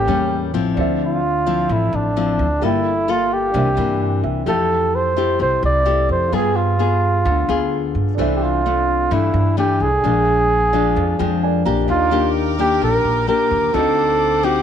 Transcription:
Already playing: A2 C#4 G4 A4 A#4 G5
0.07 E2 G3 A#3 C#4
0.54 A1 F3 C4 E4
0.75 D2 D3 D4 C5
0.81 E5
1.04 F4
1.46 F3 C4 E4
1.69 A1 A2 E4
1.93 A1 D4
2.16 F3 C4 E4
2.39 D2
2.59 G1 G3 A#3 F4 G4 A4
2.65 E4 G5
3.08 A#3 F4 A4
3.34 G4
3.51 C2 C3 E3 A#3 D4 A#4
3.56 C5 E5
3.77 G2 E3 A#3 D4
4.01 G5
4.24 C2 E5
4.46 F2 F3 A3 E4 G4 A4 E5 G5
4.95 C5
5.16 A3 E4 G4
5.39 C2 C3 C5
5.63 C2 D5
5.85 A3 E4 G4
6.09 F2 C5
6.28 G2 F4 G#4
6.32 G3 B3 F4 G#4 B4 G5
6.56 F4
6.79 B3 F4 G#4
7.25 D2 D3
7.49 D2 B3 F4 G#4
7.95 G2
8.15 C2 C3 E3 A3 D4 A4
8.19 D4 C5 E5
8.36 G4
8.43 F4
8.66 A3 D4
9.11 G2 E3 A3 D4 E4
9.34 G2
9.57 E3 A3 D4 G4
9.80 C2 G#4
10.01 A#1 A#2 F3 G#3 D4 G#4 A#4
10.07 F5
10.73 F3 G#3 D4 D5
10.96 F2 F5
11.19 F2 F3 G#3 D4 G5
11.42 D4 A#4 D5 G#5
11.65 A#1 A#3 D4 G4 A#5
11.86 D#2 D#3 G4 A#4 D5 G5 D6
11.90 D#4 F4 A#4
12.11 A#3 D4 G4
12.59 A#3 D4 G4
12.81 A#1 A#2 A#4
13.04 A#1
13.27 A#3 D4 G4 A#4
13.51 D#2
13.73 D2 D3 C4 D#4 F#4 A4 C5 D#5 F#5
14.43 C4 D#4 F#4 G4

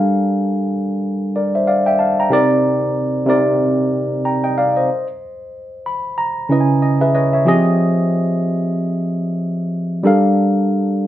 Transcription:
Already playing: G3 D4 A4 A#4 F5
1.36 A#4 D5
1.55 C5 E5
1.67 D5 F5
1.86 E5 G5
1.99 F5 A5
2.20 G5 A#5
2.30 C3 C4 D#4 A#4 D5
3.26 C3 C4 D#4 A#4 D5
4.25 G5 A#5
4.44 D#5 G5
4.58 D5 F5
4.76 C5 D#5
5.86 B5
6.18 A#5
6.49 C#3 C#4 E4 B4 D#5
6.60 G#5
6.82 D#5
7.01 G#4 B4 E5
7.15 B4 C#5 D#5
7.33 C#5 E5
7.45 F3 C4 G4 G#4 D#5
10.03 G3 D4 A4 A#4 F5

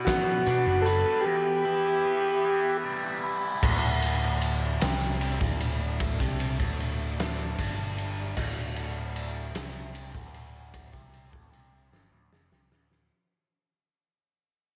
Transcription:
Already playing: B2 F#4 B4 D5 B5
0.05 B3 F#4, kick, snare, closed hi-hat, maracas
0.47 B2 D4, closed hi-hat
0.67 F#1
0.82 A4 B4, closed hi-hat
1.21 E2 G4
1.26 G4 E5
1.65 E4
2.05 B3
2.45 E3
2.84 G3
3.24 E4
3.61 D1 D2 F#3 A3 D4 A4, kick, crash, maracas
4.02 ride
4.23 maracas
4.41 ride
4.62 maracas
4.81 C2 C3, snare, ride, maracas
5.21 ride
5.41 D1 D2, kick
5.60 ride
6.00 kick, ride, maracas
6.20 C2 C3, kick
6.40 ride
6.60 D1 D2, kick, maracas
6.80 ride
7.00 maracas
7.20 snare, ride, maracas
7.59 G1 G2, kick, ride
7.98 ride
8.37 D1 D2, kick, crash, maracas
8.76 ride
8.97 maracas
9.16 ride
9.35 maracas
9.55 C2 C3, snare, ride, maracas
9.95 ride
10.15 D1 D2, kick
10.34 ride
10.74 kick, ride, maracas
10.92 C2 C3, kick, maracas
11.13 ride
11.31 D1 D2, kick, maracas
11.51 C2 C3, ride
11.92 G1 G2, snare, maracas
12.12 D1 D2
12.31 F1 F2, snare
12.52 C2 C3, snare
12.71 D1 D2, snare, maracas
12.91 snare, maracas

